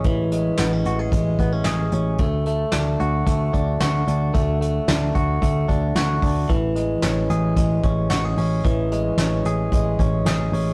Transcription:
<<
  \new Staff \with { instrumentName = "Clean electric guitar" } { \time 4/4 \key a \major \tempo 4 = 112 <e gis cis' gis'>8 gis8 b16 cis'16 fis'16 gis'16 gis8 b16 cis'16 gis'8 cis'8 | a8 a8 d'8 fis'8 a8 d'8 fis'8 d'8 | a8 a8 d'8 fis'8 a8 d'8 fis'8 d'8 | e8 gis8 cis'8 gis'8 gis8 cis'8 fis'16 gis'16 cis'8 |
e8 gis8 cis'8 gis'8 gis8 cis'8 gis'8 cis'8 | }
  \new Staff \with { instrumentName = "Picked electric bass" } { \clef bass \time 4/4 \key a \major a,,4 a,,8 a,,8 a,,8 a,,8 a,,8 a,,8 | d,4 d,8 d,8 d,8 d,8 d,8 d,8 | d,4 d,8 d,8 d,8 d,8 d,8 d,8 | a,,4 a,,8 a,,8 a,,8 a,,8 a,,8 a,,8 |
a,,4 a,,8 a,,8 a,,8 a,,8 a,,8 a,,8 | }
  \new DrumStaff \with { instrumentName = "Drums" } \drummode { \time 4/4 <hh bd>8 hh8 <hh sn>8 hh8 <hh bd>8 <hh bd>8 <hh sn>8 hh8 | <hh bd>8 hh8 <hh sn>8 hh8 <hh bd>8 <hh bd>8 <hh sn>8 hh8 | <hh bd>8 hh8 <hh sn>8 <hh bd>8 <hh bd>8 <hh bd>8 <hh sn>8 <hho bd>8 | <hh bd>8 hh8 <hh sn>8 hh8 <hh bd>8 <hh bd>8 <hh sn>8 hho8 |
<hh bd>8 hh8 <hh sn>8 hh8 <hh bd>8 <hh bd>8 <hh sn>8 hho8 | }
>>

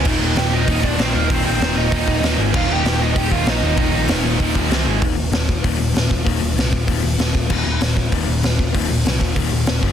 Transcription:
<<
  \new Staff \with { instrumentName = "Lead electric guitar" } { \time 4/4 \key ees \major \tempo 4 = 193 r4 <g' g''>8 <ees' ees''>4 <d' d''>8 <c' c''>8 <bes bes'>8 | <c' c''>8 <c' c''>4 <ees' ees''>2 r8 | <f' f''>8 <g' g''>4 <ees' ees''>8 <g' g''>8 <f' f''>8 <ees' ees''>4 | <ees' ees''>4 r2. |
r1 | r1 | r1 | r1 | }
  \new Staff \with { instrumentName = "Distorted electric guitar" } { \clef bass \time 4/4 \key ees \major <ees, bes, ees>2 <ees, bes, ees>2 | <ees, bes, ees>2 <ees, bes, ees>4. r8 | <ees, bes, ees>2 <bes, ees>2 | <ees, bes, ees>2 <ees, bes, ees>4 r4 |
r1 | r1 | r1 | r1 | }
  \new Staff \with { instrumentName = "Overdriven electric guitar" } { \clef bass \time 4/4 \key ees \major <ees, bes, ees>8 <ees, bes, ees>8 <ees, bes, ees>8 <ees, bes, ees>8 <ees, bes, ees>8 <ees, bes, ees>8 <ees, bes, ees>8 <ees, bes, ees>8 | <ees, bes, ees>8 <ees, bes, ees>8 <ees, bes, ees>8 <ees, bes, ees>8 <ees, bes, ees>8 <ees, bes, ees>8 <ees, bes, ees>8 <aes, ees aes>8 | <ees, bes, ees>8 <ees, bes, ees>8 <ees, bes, ees>8 <ees, bes, ees>8 <ees, bes, ees>8 <ees, bes, ees>8 <ees, bes, ees>8 <ees, bes, ees>8 | <ees, bes, ees>8 <ees, bes, ees>8 <ees, bes, ees>8 <ees, bes, ees>8 <ees, bes, ees>8 <ees, bes, ees>8 <c g c'>8 <aes, ees aes>8 |
<ees, bes, ees>8 <ees, bes,>8 <ees, bes,>8 <ees, bes,>8 <ees, bes, ees>8 <ees, bes,>8 <ees, bes,>8 <ees, bes,>8 | <ees, bes, ees>8 <ees, bes,>8 <ees, bes,>8 <ees, bes,>8 <ees, bes, ees>8 <ees, bes,>8 <ees, bes,>8 <ees, bes,>8 | <ees, bes, ees>8 <ees, bes,>8 <ees, bes,>8 <ees, bes,>8 <ees, bes, ees>8 <ees, bes,>8 <ees, bes,>8 <ees, bes,>8 | <ees, bes, ees>8 <ees, bes,>8 <ees, bes,>8 <ees, bes,>8 <ees, bes, ees>8 <ees, bes,>8 <ees, bes,>8 <ges, des ges>8 | }
  \new Staff \with { instrumentName = "Overdriven electric guitar" } { \clef bass \time 4/4 \key ees \major <ees, bes, ees>8 <ees, bes, ees>8 <ees, bes, ees>8 <ees, bes, ees>8 <ees, bes, ees>8 <ees, bes, ees>8 <ees, bes, ees>8 <ees, bes, ees>8 | <ees, bes, ees>8 <ees, bes, ees>8 <ees, bes, ees>8 <ees, bes, ees>8 <ees, bes, ees>8 <ees, bes, ees>8 <ees, bes, ees>8 <aes, ees aes>8 | <ees, bes, ees>8 <ees, bes, ees>8 <ees, bes, ees>8 <ees, bes, ees>8 <ees, bes, ees>8 <ees, bes, ees>8 <ees, bes, ees>8 <ees, bes, ees>8 | <ees, bes, ees>8 <ees, bes, ees>8 <ees, bes, ees>8 <ees, bes, ees>8 <ees, bes, ees>8 <ees, bes, ees>8 <c g c'>8 <aes, ees aes>8 |
r1 | r1 | r1 | r1 | }
  \new Staff \with { instrumentName = "Picked electric bass" } { \clef bass \time 4/4 \key ees \major ees,,8 ees,,8 ees,,4 ees,,4 bes,,8 ees,,8 | ees,,8 bes,,8 ees,,4 ees,,8 ees,,8 ees,,8 aes,,8 | ees,,8 ees,,8 ees,,4 ees,,4 bes,,8 ees,,8 | ees,,8 bes,,8 ees,,4 ees,,8 ees,,8 c,8 aes,,8 |
ees,,8 ees,,8 ees,,4 ees,,8 ees,,8 ees,,8 ees,,8 | ees,,8 ees,,8 c,8 ees,,8 ees,,8 ees,,8 ees,,8 ees,,8 | ees,,8 ees,,8 ees,,4 ees,,8 ees,,8 ees,,8 ees,,8 | ees,,8 ees,,8 c,8 ees,,8 ees,,8 ees,,8 ees,,8 ges,,8 | }
  \new DrumStaff \with { instrumentName = "Drums" } \drummode { \time 4/4 <cymc hho bd>4 <hho sn>4 <hho bd>8 bd8 <hho sn>4 | <hho bd>4 <hho sn>4 <hho bd>8 bd8 <hho sn>4 | <cymc bd>4 <hho sn>4 <hho bd>8 bd8 <hho sn>4 | <hho bd>4 <hho sn>4 <hho bd>8 bd8 <hho sn>4 |
<hho bd>4 <hho sn>8 bd8 <hho bd>4 <hho sn>8 bd8 | <hho bd>4 <hho sn>8 bd8 <hho bd>4 <hho sn>8 bd8 | <cymc bd>4 <hho sn>8 bd8 <hho bd>4 <hho sn>8 bd8 | <hho bd>4 <hho sn>8 bd8 <hho bd>4 <hho sn>8 bd8 | }
>>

